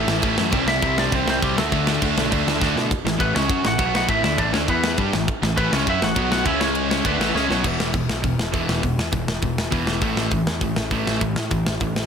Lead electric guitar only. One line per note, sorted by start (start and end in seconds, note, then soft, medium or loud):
0.00 0.34 A3 medium
0.00 0.35 A4 medium
0.68 0.96 E4 medium
0.68 0.99 E5 loud
0.99 1.12 D4 medium
0.99 1.16 D5 loud
1.15 1.27 C4 medium
1.15 1.29 C5 loud
1.28 1.42 C4 medium
1.28 1.41 C5 loud
1.41 1.55 G3 medium
1.41 1.58 G4 medium
1.57 2.56 A3 medium
1.57 2.57 A4 medium
3.20 3.34 B3 medium
3.20 3.35 B4 medium
3.35 3.62 C#4 medium
3.35 3.65 C#5 loud
3.66 3.93 F#4 medium
3.66 3.95 F#5 loud
3.95 4.08 F#4 medium
3.95 4.09 F#5 loud
4.09 4.21 E4 medium
4.09 4.24 E5 loud
4.23 4.37 E4 medium
4.23 4.39 E5 medium
4.37 4.51 D4 medium
4.37 4.53 D5 medium
4.53 4.58 C#4 medium
4.53 4.58 C#5 medium
4.69 4.96 B3 medium
4.69 4.96 B4 medium
5.57 5.71 B3 medium
5.57 5.73 B4 medium
5.73 5.87 C#4 medium
5.73 5.87 C#5 medium
5.89 6.02 E4 medium
5.89 6.03 E5 loud
6.03 6.30 F#4 medium
6.03 6.30 F#5 loud
6.32 6.45 F#4 medium
6.32 6.46 F#5 loud
6.46 6.60 E4 medium
6.46 6.61 E5 loud
6.60 6.88 C#4 medium
6.60 6.89 C#5 medium
6.90 7.04 C#4 medium
6.90 7.06 C#5 medium
7.05 7.32 B3 medium
7.05 7.35 B4 medium
7.35 7.49 C#4 medium
7.35 7.50 C#5 medium
7.51 7.64 C#4 medium
7.51 7.65 C#5 medium